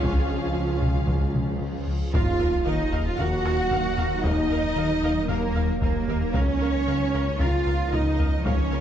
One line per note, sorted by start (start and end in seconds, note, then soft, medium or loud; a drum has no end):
0.00 1.90 C#2 medium
0.00 2.13 C#2 medium
0.00 0.19 C#2 loud
0.00 2.10 F3 medium
0.00 1.84 F3 loud
0.00 1.89 C#4 medium
0.00 2.14 C#4 medium
0.00 1.89 F4 loud
0.00 2.14 F4 medium
0.00 1.90 G#4 loud
0.00 2.14 G#4 medium
0.00 1.89 F5 loud
0.00 1.84 F5 loud
0.00 taiko loud
0.00 reverse cymbal medium
0.30 0.45 C#2 medium
0.56 0.72 C#2 medium
0.82 0.98 C#2 medium
0.82 taiko mid medium
1.08 1.24 C#2 loud
1.08 taiko loud
1.35 1.50 C#3 medium
1.35 taiko mid medium
1.61 1.77 C#2 medium
1.87 2.03 C#2 medium
2.13 6.36 D#1 loud
2.13 2.29 D#2 loud
2.13 2.60 D#2 loud
2.13 6.31 F#3 loud
2.13 6.31 A#3 medium
2.13 6.31 D#4 loud
2.13 2.63 F4 loud
2.13 2.21 A#4 medium
2.13 6.31 A#4 loud
2.13 2.21 F5 medium
2.13 2.63 F5 loud
2.13 taiko loud
2.13 sub drop medium
2.40 2.56 D#2 medium
2.40 2.48 A#4 medium
2.40 2.48 F5 medium
2.66 3.13 D#2 medium
2.66 2.82 D#3 medium
2.66 3.05 D#4 medium
2.66 3.06 D#4 loud
2.66 2.74 A#4 medium
2.66 3.05 D#5 loud
2.66 3.06 D#5 loud
2.66 2.74 F5 medium
2.92 3.08 D#2 loud
2.92 3.01 A#4 medium
2.92 3.01 F5 medium
3.05 3.18 F4 loud
3.05 3.19 F4 loud
3.05 3.19 F5 medium
3.05 3.19 F5 loud
3.18 3.35 D#2 medium
3.18 3.65 D#2 medium
3.18 4.23 F#4 loud
3.18 4.24 F#4 loud
3.18 3.27 A#4 medium
3.18 3.27 F5 medium
3.18 4.24 F#5 loud
3.18 taiko low medium
3.45 3.61 D#2 medium
3.45 3.53 A#4 medium
3.45 3.53 F5 medium
3.45 taiko rim soft
3.71 3.87 D#2 loud
3.71 4.18 D#2 medium
3.71 3.80 A#4 medium
3.71 3.80 F5 medium
3.71 taiko medium
3.97 4.14 D#2 medium
3.97 4.06 A#4 medium
3.97 4.06 F5 medium
3.97 taiko low medium
4.24 4.40 D#2 loud
4.24 4.71 D#2 loud
4.24 5.27 D#4 loud
4.24 5.29 D#4 loud
4.24 4.33 A#4 medium
4.24 5.29 D#5 loud
4.24 4.33 F5 medium
4.24 taiko loud
4.50 4.66 D#2 medium
4.50 4.59 A#4 medium
4.50 4.59 F5 medium
4.76 5.23 D#2 medium
4.76 4.92 D#3 medium
4.76 4.85 A#4 medium
4.76 4.85 F5 medium
5.03 5.19 D#2 medium
5.03 5.11 A#4 medium
5.03 5.11 F5 medium
5.29 5.45 D#2 medium
5.29 5.76 D#2 loud
5.29 5.81 A#3 medium
5.29 5.81 A#3 loud
5.29 5.80 A#4 medium
5.29 5.81 A#4 loud
5.29 5.37 A#4 medium
5.29 5.38 F5 medium
5.29 taiko low medium
5.55 5.71 D#2 medium
5.55 5.63 A#4 medium
5.55 5.64 F5 medium
5.81 5.97 D#2 loud
5.81 6.28 D#2 medium
5.81 6.34 A#3 medium
5.81 6.34 A#3 loud
5.81 6.33 A#4 medium
5.81 5.90 A#4 medium
5.81 6.34 A#4 medium
5.81 5.90 F5 medium
5.81 taiko medium
6.08 6.24 D#2 medium
6.08 6.17 A#4 medium
6.08 6.17 F5 medium
6.08 taiko low medium
6.34 6.50 C#2 medium
6.34 6.81 C#2 medium
6.34 8.80 C#2 medium
6.34 8.80 F3 loud
6.34 8.80 A#3 medium
6.34 7.40 C#4 loud
6.34 8.80 F4 medium
6.34 6.42 A#4 medium
6.34 8.80 A#4 medium
6.34 7.40 C#5 loud
6.34 6.42 F5 medium
6.34 taiko loud
6.61 6.77 C#2 medium
6.61 6.69 A#4 medium
6.61 6.69 F5 medium
6.87 7.34 C#2 medium
6.87 7.03 C#3 medium
6.87 6.95 A#4 medium
6.87 6.95 F5 medium
7.14 7.30 C#2 medium
7.14 7.22 A#4 medium
7.14 7.22 F5 medium
7.40 7.86 C#2 medium
7.40 7.56 C#2 medium
7.40 7.93 F4 loud
7.40 7.48 A#4 medium
7.40 7.48 F5 medium
7.40 7.92 F5 medium
7.40 7.93 F5 loud
7.40 taiko low medium
7.66 7.82 C#2 medium
7.66 7.74 A#4 medium
7.66 7.74 F5 medium
7.92 8.39 C#2 medium
7.92 8.08 C#2 medium
7.92 8.44 D#4 medium
7.92 8.46 D#4 loud
7.92 8.00 A#4 medium
7.92 8.44 D#5 medium
7.92 8.45 D#5 loud
7.92 8.00 F5 medium
7.92 taiko medium
8.19 8.35 C#2 medium
8.19 8.27 A#4 medium
8.19 8.27 F5 medium
8.19 taiko low medium
8.45 8.80 C#2 medium
8.45 8.61 C#2 loud
8.45 8.80 C#4 loud
8.45 8.53 A#4 medium
8.45 8.80 C#5 loud
8.45 8.53 F5 medium
8.45 taiko loud
8.71 8.80 C#2 medium
8.71 8.79 A#4 medium
8.71 8.79 F5 medium